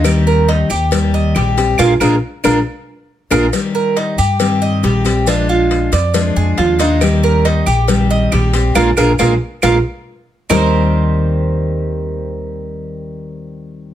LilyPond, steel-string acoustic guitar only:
\new Staff \with { instrumentName = "Steel-string acoustic guitar" } { \time 4/4 \key ees \major \tempo 4 = 138 <ees g c' g'>4. r8 <ees g c' g'>4 <ees g c' g'>8 <g c' g'>8 | <aes bes d'>8 <aes bes d'>8 r8 <aes bes d'>8 r4. <aes bes d'>8 | <ees g c' g'>4. r8 <ees g c' g'>4 <ees g c' g'>8 <g c' g'>8 | <f aes d' f'>4. r8 <f aes d' f'>4 <f aes d' f'>8 <aes d' f'>8 |
<ees g c' g'>4. r8 <ees g c' g'>4 <ees g c' g'>8 <g c' g'>8 | <aes bes d'>8 <aes bes d'>8 <aes bes d'>8 r8 <aes bes d'>8 r4. | <ees g c' g'>1~ | <ees g c' g'>1 | }